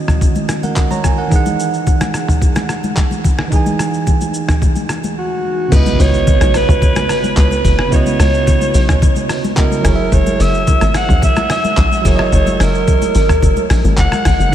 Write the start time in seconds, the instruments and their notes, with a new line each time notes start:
Already playing: tine electric piano D#3 C#4 E4 F#4 D#5
0.08 cross-stick, mid tom, shaker
0.21 kick, low conga, shaker
0.35 high conga, shaker
0.49 cross-stick, shaker
0.63 tine electric piano A#4 F#5, high conga, shaker
0.76 kick, clap, shaker
0.91 tine electric piano C#5 A#5, high conga, shaker
1.04 tine electric piano G#5, kick, cross-stick, low conga, shaker
1.18 tine electric piano A#4 F#5
1.28 tine electric piano E3 D#4, kick, shaker
1.33 tine electric piano G#4 F#5
1.46 high conga, shaker
1.60 shaker
1.74 shaker
1.87 kick, low conga, shaker
2.01 cross-stick, high conga, shaker
2.14 cross-stick, shaker
2.28 mid tom, shaker
2.42 kick, low conga, shaker
2.55 cross-stick, high conga, shaker
2.69 cross-stick, shaker
2.83 high conga, shaker
2.96 kick, clap, shaker
3.11 high conga, shaker
3.24 kick, low conga, shaker
3.39 cross-stick
3.48 tine electric piano E3 D#4
3.52 tine electric piano G#4 G#5, kick, shaker
3.66 high conga, shaker
3.79 cross-stick, shaker
3.94 shaker
4.07 kick, low conga, shaker
4.21 high conga, shaker
4.34 shaker
4.48 cross-stick, mid tom, shaker
4.62 kick, low conga, shaker
4.76 high conga, shaker
4.89 cross-stick, shaker
5.04 high conga, shaker
5.18 alto saxophone F#4
5.68 log drum bass C#2, tine electric piano C#3 B3 E4, kick, crash, impact, shaker
5.73 tine electric piano F#4 D#5, alto saxophone B4
5.86 high conga, shaker
6.00 log drum bass C#2, alto saxophone C#5, open hi-hat, shaker
6.14 shaker
6.27 kick, low conga, shaker
6.41 log drum bass B1, cross-stick, high conga, shaker
6.54 alto saxophone B4, cross-stick, open hi-hat, shaker
6.69 log drum bass C#2, mid tom, shaker
6.82 kick, low conga, shaker
6.96 cross-stick, high conga, shaker
7.09 cross-stick, open hi-hat, shaker
7.24 high conga, shaker
7.36 log drum bass C#2, alto saxophone B4, kick, clap, shaker
7.51 high conga, shaker
7.65 log drum bass F#1, kick, open hi-hat, low conga, shaker
7.79 cross-stick
7.88 log drum bass C#2, tine electric piano C#3 B3 E4, kick, shaker
7.94 tine electric piano F#4 D#5, alto saxophone C#5
8.06 high conga, shaker
8.20 log drum bass C#2, cross-stick, open hi-hat, shaker
8.34 shaker
8.47 kick, low conga, shaker
8.61 high conga, shaker
8.74 log drum bass B1, open hi-hat, shaker
8.89 cross-stick, mid tom, shaker
9.02 kick, low conga, shaker
9.16 high conga, shaker
9.29 cross-stick, open hi-hat, shaker
9.44 high conga, shaker
9.56 tine electric piano C#3 B3 E4 F#4 D#5, alto saxophone A#4, kick, clap, shaker
9.71 high conga, shaker
9.81 log drum bass F#1, tine electric piano F#3 E4 G#4, kick, cross-stick, open hi-hat, low conga, shaker
9.87 tine electric piano A#4 C#5
9.95 tine electric piano E5
10.12 log drum bass F#1, alto saxophone C#5, kick, shaker
10.26 high conga, shaker
10.40 log drum bass F#1, alto saxophone E5, open hi-hat, shaker
10.54 shaker
10.67 kick, low conga, shaker
10.81 log drum bass G#1, cross-stick, high conga, shaker
10.94 alto saxophone F#5, cross-stick, open hi-hat, shaker
11.09 log drum bass A#1, mid tom, shaker
11.22 alto saxophone E5, kick, low conga, shaker
11.36 cross-stick, high conga, shaker
11.50 alto saxophone E5, cross-stick, open hi-hat, shaker
11.64 high conga, shaker
11.77 log drum bass A#1, kick, clap, shaker
11.92 high conga, shaker
12.01 log drum bass F#1, tine electric piano F#3 E4 G#4, kick, open hi-hat, low conga, shaker
12.06 tine electric piano A#4 C#5, alto saxophone C#5
12.15 tine electric piano D#5, cross-stick
12.32 log drum bass F#1, alto saxophone C#5, kick, shaker
12.47 high conga, shaker
12.60 log drum bass F#1, alto saxophone A#4, cross-stick, open hi-hat, shaker
12.74 shaker
12.88 kick, low conga, shaker
13.02 high conga, shaker
13.15 log drum bass G#1, open hi-hat, shaker
13.29 cross-stick, mid tom, shaker
13.43 log drum bass F#1, kick, low conga, shaker
13.56 high conga, shaker
13.70 log drum bass A#1, cross-stick, open hi-hat, shaker
13.84 log drum bass G#1, high conga, shaker
13.97 log drum bass F#1, alto saxophone F#5, kick, clap, shaker
14.12 cross-stick, high conga, shaker
14.25 log drum bass G#1, kick, cross-stick, open hi-hat, low conga, shaker
14.39 log drum bass F#1, shaker
14.49 tine electric piano D#3 D#4